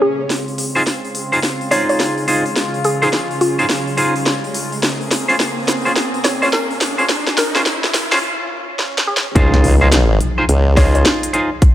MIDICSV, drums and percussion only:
0, 0, Header, 1, 2, 480
1, 0, Start_track
1, 0, Tempo, 566038
1, 254, Time_signature, 4, 2, 24, 8
1, 9962, End_track
2, 0, Start_track
2, 0, Title_t, "Drums"
2, 255, Note_on_c, 9, 38, 46
2, 255, Note_on_c, 9, 46, 39
2, 339, Note_off_c, 9, 38, 0
2, 339, Note_off_c, 9, 46, 0
2, 407, Note_on_c, 9, 46, 20
2, 492, Note_off_c, 9, 46, 0
2, 494, Note_on_c, 9, 46, 68
2, 579, Note_off_c, 9, 46, 0
2, 647, Note_on_c, 9, 46, 29
2, 732, Note_off_c, 9, 46, 0
2, 734, Note_on_c, 9, 38, 46
2, 734, Note_on_c, 9, 46, 39
2, 819, Note_off_c, 9, 38, 0
2, 819, Note_off_c, 9, 46, 0
2, 887, Note_on_c, 9, 46, 19
2, 972, Note_off_c, 9, 46, 0
2, 973, Note_on_c, 9, 46, 67
2, 1058, Note_off_c, 9, 46, 0
2, 1127, Note_on_c, 9, 46, 30
2, 1211, Note_off_c, 9, 46, 0
2, 1214, Note_on_c, 9, 38, 50
2, 1214, Note_on_c, 9, 46, 39
2, 1299, Note_off_c, 9, 38, 0
2, 1299, Note_off_c, 9, 46, 0
2, 1366, Note_on_c, 9, 46, 20
2, 1451, Note_off_c, 9, 46, 0
2, 1454, Note_on_c, 9, 46, 71
2, 1539, Note_off_c, 9, 46, 0
2, 1606, Note_on_c, 9, 46, 31
2, 1691, Note_off_c, 9, 46, 0
2, 1693, Note_on_c, 9, 38, 52
2, 1693, Note_on_c, 9, 46, 40
2, 1778, Note_off_c, 9, 38, 0
2, 1778, Note_off_c, 9, 46, 0
2, 1846, Note_on_c, 9, 46, 21
2, 1931, Note_off_c, 9, 46, 0
2, 1932, Note_on_c, 9, 46, 71
2, 2017, Note_off_c, 9, 46, 0
2, 2085, Note_on_c, 9, 46, 30
2, 2169, Note_off_c, 9, 46, 0
2, 2173, Note_on_c, 9, 38, 57
2, 2173, Note_on_c, 9, 46, 39
2, 2257, Note_off_c, 9, 38, 0
2, 2257, Note_off_c, 9, 46, 0
2, 2325, Note_on_c, 9, 46, 20
2, 2410, Note_off_c, 9, 46, 0
2, 2413, Note_on_c, 9, 46, 67
2, 2497, Note_off_c, 9, 46, 0
2, 2565, Note_on_c, 9, 46, 29
2, 2650, Note_off_c, 9, 46, 0
2, 2653, Note_on_c, 9, 38, 56
2, 2653, Note_on_c, 9, 46, 37
2, 2738, Note_off_c, 9, 38, 0
2, 2738, Note_off_c, 9, 46, 0
2, 2806, Note_on_c, 9, 46, 20
2, 2890, Note_off_c, 9, 46, 0
2, 2893, Note_on_c, 9, 46, 65
2, 2978, Note_off_c, 9, 46, 0
2, 3045, Note_on_c, 9, 46, 29
2, 3130, Note_off_c, 9, 46, 0
2, 3133, Note_on_c, 9, 38, 63
2, 3133, Note_on_c, 9, 46, 38
2, 3217, Note_off_c, 9, 38, 0
2, 3217, Note_off_c, 9, 46, 0
2, 3286, Note_on_c, 9, 46, 19
2, 3371, Note_off_c, 9, 46, 0
2, 3372, Note_on_c, 9, 46, 69
2, 3457, Note_off_c, 9, 46, 0
2, 3525, Note_on_c, 9, 46, 30
2, 3610, Note_off_c, 9, 46, 0
2, 3614, Note_on_c, 9, 38, 68
2, 3614, Note_on_c, 9, 46, 39
2, 3698, Note_off_c, 9, 38, 0
2, 3698, Note_off_c, 9, 46, 0
2, 3766, Note_on_c, 9, 46, 20
2, 3851, Note_off_c, 9, 46, 0
2, 3854, Note_on_c, 9, 46, 70
2, 3939, Note_off_c, 9, 46, 0
2, 4006, Note_on_c, 9, 46, 30
2, 4091, Note_off_c, 9, 46, 0
2, 4095, Note_on_c, 9, 38, 75
2, 4095, Note_on_c, 9, 46, 41
2, 4180, Note_off_c, 9, 38, 0
2, 4180, Note_off_c, 9, 46, 0
2, 4248, Note_on_c, 9, 46, 19
2, 4333, Note_off_c, 9, 46, 0
2, 4336, Note_on_c, 9, 38, 75
2, 4336, Note_on_c, 9, 46, 69
2, 4421, Note_off_c, 9, 38, 0
2, 4421, Note_off_c, 9, 46, 0
2, 4488, Note_on_c, 9, 46, 29
2, 4573, Note_off_c, 9, 46, 0
2, 4577, Note_on_c, 9, 38, 77
2, 4577, Note_on_c, 9, 46, 38
2, 4662, Note_off_c, 9, 38, 0
2, 4662, Note_off_c, 9, 46, 0
2, 4729, Note_on_c, 9, 46, 9
2, 4750, Note_off_c, 9, 46, 0
2, 4750, Note_on_c, 9, 46, 10
2, 4772, Note_off_c, 9, 46, 0
2, 4772, Note_on_c, 9, 46, 11
2, 4795, Note_off_c, 9, 46, 0
2, 4795, Note_on_c, 9, 46, 12
2, 4817, Note_off_c, 9, 46, 0
2, 4817, Note_on_c, 9, 38, 78
2, 4817, Note_on_c, 9, 46, 67
2, 4855, Note_off_c, 9, 46, 0
2, 4855, Note_on_c, 9, 46, 15
2, 4893, Note_off_c, 9, 46, 0
2, 4893, Note_on_c, 9, 46, 16
2, 4901, Note_off_c, 9, 38, 0
2, 4930, Note_off_c, 9, 46, 0
2, 4930, Note_on_c, 9, 46, 17
2, 4969, Note_off_c, 9, 46, 0
2, 4969, Note_on_c, 9, 46, 28
2, 5054, Note_off_c, 9, 46, 0
2, 5056, Note_on_c, 9, 38, 80
2, 5056, Note_on_c, 9, 46, 38
2, 5141, Note_off_c, 9, 38, 0
2, 5141, Note_off_c, 9, 46, 0
2, 5208, Note_on_c, 9, 46, 20
2, 5293, Note_off_c, 9, 46, 0
2, 5296, Note_on_c, 9, 38, 84
2, 5296, Note_on_c, 9, 46, 69
2, 5380, Note_off_c, 9, 38, 0
2, 5380, Note_off_c, 9, 46, 0
2, 5449, Note_on_c, 9, 46, 30
2, 5534, Note_off_c, 9, 46, 0
2, 5537, Note_on_c, 9, 38, 87
2, 5537, Note_on_c, 9, 46, 40
2, 5622, Note_off_c, 9, 38, 0
2, 5622, Note_off_c, 9, 46, 0
2, 5687, Note_on_c, 9, 46, 21
2, 5772, Note_off_c, 9, 46, 0
2, 5774, Note_on_c, 9, 38, 87
2, 5774, Note_on_c, 9, 46, 72
2, 5859, Note_off_c, 9, 38, 0
2, 5859, Note_off_c, 9, 46, 0
2, 5926, Note_on_c, 9, 46, 30
2, 6011, Note_off_c, 9, 46, 0
2, 6014, Note_on_c, 9, 38, 93
2, 6014, Note_on_c, 9, 46, 40
2, 6099, Note_off_c, 9, 38, 0
2, 6099, Note_off_c, 9, 46, 0
2, 6167, Note_on_c, 9, 38, 80
2, 6167, Note_on_c, 9, 46, 20
2, 6252, Note_off_c, 9, 38, 0
2, 6252, Note_off_c, 9, 46, 0
2, 6254, Note_on_c, 9, 38, 97
2, 6254, Note_on_c, 9, 46, 73
2, 6339, Note_off_c, 9, 38, 0
2, 6339, Note_off_c, 9, 46, 0
2, 6406, Note_on_c, 9, 38, 82
2, 6406, Note_on_c, 9, 46, 31
2, 6491, Note_off_c, 9, 38, 0
2, 6491, Note_off_c, 9, 46, 0
2, 6494, Note_on_c, 9, 38, 92
2, 6494, Note_on_c, 9, 46, 40
2, 6579, Note_off_c, 9, 38, 0
2, 6579, Note_off_c, 9, 46, 0
2, 6647, Note_on_c, 9, 38, 84
2, 6647, Note_on_c, 9, 46, 20
2, 6732, Note_off_c, 9, 38, 0
2, 6732, Note_off_c, 9, 46, 0
2, 6734, Note_on_c, 9, 38, 98
2, 6734, Note_on_c, 9, 46, 70
2, 6819, Note_off_c, 9, 38, 0
2, 6819, Note_off_c, 9, 46, 0
2, 6886, Note_on_c, 9, 38, 85
2, 6886, Note_on_c, 9, 46, 31
2, 6928, Note_off_c, 9, 46, 0
2, 6928, Note_on_c, 9, 46, 40
2, 6971, Note_off_c, 9, 38, 0
2, 7013, Note_off_c, 9, 46, 0
2, 7453, Note_on_c, 9, 38, 66
2, 7538, Note_off_c, 9, 38, 0
2, 7615, Note_on_c, 9, 38, 88
2, 7699, Note_off_c, 9, 38, 0
2, 7774, Note_on_c, 9, 38, 96
2, 7859, Note_off_c, 9, 38, 0
2, 7934, Note_on_c, 9, 36, 113
2, 7934, Note_on_c, 9, 42, 86
2, 8019, Note_off_c, 9, 36, 0
2, 8019, Note_off_c, 9, 42, 0
2, 8087, Note_on_c, 9, 40, 40
2, 8172, Note_off_c, 9, 40, 0
2, 8175, Note_on_c, 9, 46, 65
2, 8259, Note_off_c, 9, 46, 0
2, 8414, Note_on_c, 9, 38, 113
2, 8414, Note_on_c, 9, 42, 82
2, 8499, Note_off_c, 9, 38, 0
2, 8499, Note_off_c, 9, 42, 0
2, 8654, Note_on_c, 9, 42, 66
2, 8739, Note_off_c, 9, 42, 0
2, 8894, Note_on_c, 9, 42, 82
2, 8979, Note_off_c, 9, 42, 0
2, 9133, Note_on_c, 9, 36, 104
2, 9134, Note_on_c, 9, 38, 62
2, 9134, Note_on_c, 9, 46, 64
2, 9218, Note_off_c, 9, 36, 0
2, 9218, Note_off_c, 9, 38, 0
2, 9218, Note_off_c, 9, 46, 0
2, 9285, Note_on_c, 9, 42, 38
2, 9370, Note_off_c, 9, 42, 0
2, 9374, Note_on_c, 9, 38, 116
2, 9374, Note_on_c, 9, 42, 65
2, 9459, Note_off_c, 9, 38, 0
2, 9459, Note_off_c, 9, 42, 0
2, 9526, Note_on_c, 9, 42, 85
2, 9611, Note_off_c, 9, 42, 0
2, 9613, Note_on_c, 9, 42, 70
2, 9698, Note_off_c, 9, 42, 0
2, 9853, Note_on_c, 9, 36, 120
2, 9853, Note_on_c, 9, 42, 81
2, 9938, Note_off_c, 9, 36, 0
2, 9938, Note_off_c, 9, 42, 0
2, 9962, End_track
0, 0, End_of_file